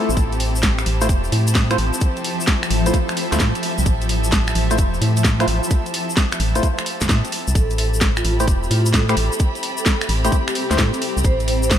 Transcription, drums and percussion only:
0.10 shaker
0.17 kick, closed hi-hat, shaker
0.32 closed hi-hat, shaker
0.40 open hi-hat
0.55 shaker
0.63 kick, snare, shaker
0.78 finger snap, closed hi-hat, shaker
0.86 open hi-hat
1.01 closed hi-hat, shaker
1.09 kick, closed hi-hat, shaker
1.24 shaker
1.32 open hi-hat
1.47 closed hi-hat, shaker
1.55 kick, snare, shaker
1.70 finger snap, closed hi-hat, shaker
1.78 open hi-hat
1.94 shaker
2.01 kick, closed hi-hat, shaker
2.17 closed hi-hat, shaker
2.24 open hi-hat
2.40 shaker
2.47 kick, snare
2.63 finger snap, closed hi-hat, shaker
2.71 open hi-hat
2.86 closed hi-hat, shaker
2.94 kick, closed hi-hat
3.09 finger snap, shaker
3.17 open hi-hat
3.32 snare, closed hi-hat, shaker
3.40 kick, snare, shaker
3.55 closed hi-hat, shaker
3.63 open hi-hat
3.78 shaker
3.86 kick, closed hi-hat, shaker
4.02 closed hi-hat, shaker
4.09 open hi-hat
4.24 shaker
4.32 kick, snare, shaker
4.47 finger snap, closed hi-hat, shaker
4.55 open hi-hat
4.71 closed hi-hat, shaker
4.78 kick, closed hi-hat, shaker
4.94 shaker
5.02 open hi-hat
5.17 closed hi-hat, shaker
5.25 kick, snare, shaker
5.40 finger snap, closed hi-hat, shaker
5.48 open hi-hat
5.63 shaker
5.70 kick, closed hi-hat, shaker
5.86 closed hi-hat, shaker
5.94 open hi-hat
6.10 shaker
6.17 kick, snare, shaker
6.32 finger snap, closed hi-hat, shaker
6.40 open hi-hat
6.55 closed hi-hat, shaker
6.63 kick, closed hi-hat, shaker
6.78 finger snap, shaker
6.86 open hi-hat
7.01 kick, snare, closed hi-hat, shaker
7.09 kick, snare, shaker
7.25 closed hi-hat, shaker
7.32 open hi-hat
7.48 shaker
7.55 kick, closed hi-hat, shaker
7.70 closed hi-hat, shaker
7.78 open hi-hat
7.94 shaker
8.01 kick, snare, shaker
8.17 finger snap, closed hi-hat, shaker
8.25 open hi-hat
8.40 closed hi-hat, shaker
8.47 kick, closed hi-hat, shaker
8.63 shaker
8.71 open hi-hat
8.86 closed hi-hat, shaker
8.94 kick, snare, shaker
9.09 finger snap, closed hi-hat, shaker
9.17 open hi-hat
9.32 shaker
9.39 kick, closed hi-hat, shaker
9.55 closed hi-hat, shaker
9.63 open hi-hat
9.77 shaker
9.86 kick, snare, shaker
10.01 finger snap, closed hi-hat, shaker
10.09 open hi-hat
10.25 closed hi-hat, shaker
10.32 kick, closed hi-hat, shaker
10.48 finger snap, shaker
10.55 open hi-hat
10.71 snare, closed hi-hat, shaker
10.78 kick, snare, shaker
10.94 closed hi-hat, shaker
11.02 open hi-hat
11.17 shaker
11.24 kick, closed hi-hat, shaker
11.40 closed hi-hat, shaker
11.48 open hi-hat
11.63 shaker
11.71 kick, snare, shaker

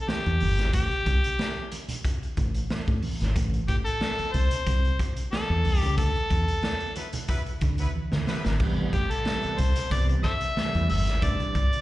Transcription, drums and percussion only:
0.08 snare, high conga
0.26 closed hi-hat
0.40 open hi-hat, high conga
0.58 snare, closed hi-hat
0.73 kick, closed hi-hat, muted conga
0.91 closed hi-hat
1.06 kick, closed hi-hat
1.24 closed hi-hat
1.39 snare, high conga
1.72 closed hi-hat, muted conga
1.88 closed hi-hat, low conga
2.04 kick, closed hi-hat, muted conga
2.23 closed hi-hat
2.37 kick, closed hi-hat, muted conga, low conga
2.54 closed hi-hat
2.70 snare, high conga
2.88 kick, closed hi-hat
3.02 open hi-hat, high conga
3.21 snare, closed hi-hat
3.36 kick, closed hi-hat
3.54 closed hi-hat
3.68 kick, closed hi-hat
3.86 closed hi-hat
4.01 snare, high conga
4.19 closed hi-hat
4.34 closed hi-hat, muted conga, low conga
4.51 closed hi-hat
4.66 kick, closed hi-hat, muted conga
4.85 closed hi-hat
4.99 kick, closed hi-hat, muted conga
5.17 closed hi-hat
5.32 snare, high conga
5.65 open hi-hat, high conga
5.83 closed hi-hat
5.98 kick, closed hi-hat
6.15 closed hi-hat
6.30 kick, closed hi-hat
6.48 closed hi-hat
6.63 snare, high conga
6.81 closed hi-hat
6.96 closed hi-hat, muted conga
7.13 closed hi-hat, low conga
7.28 kick, closed hi-hat, muted conga
7.46 closed hi-hat
7.61 kick, closed hi-hat, muted conga, low conga
7.78 closed hi-hat
7.95 high conga
8.12 snare
8.27 snare, high conga
8.45 snare
8.60 kick, crash, muted conga
8.93 kick, closed hi-hat
9.11 closed hi-hat
9.25 snare, high conga
9.43 closed hi-hat
9.58 closed hi-hat, muted conga, low conga
9.76 closed hi-hat
9.90 kick, closed hi-hat, muted conga
10.09 closed hi-hat
10.23 kick, closed hi-hat, muted conga
10.41 closed hi-hat
10.57 snare, high conga
10.75 closed hi-hat
10.89 open hi-hat, high conga
11.07 snare, closed hi-hat
11.22 kick, closed hi-hat
11.40 closed hi-hat
11.55 kick, closed hi-hat
11.73 closed hi-hat

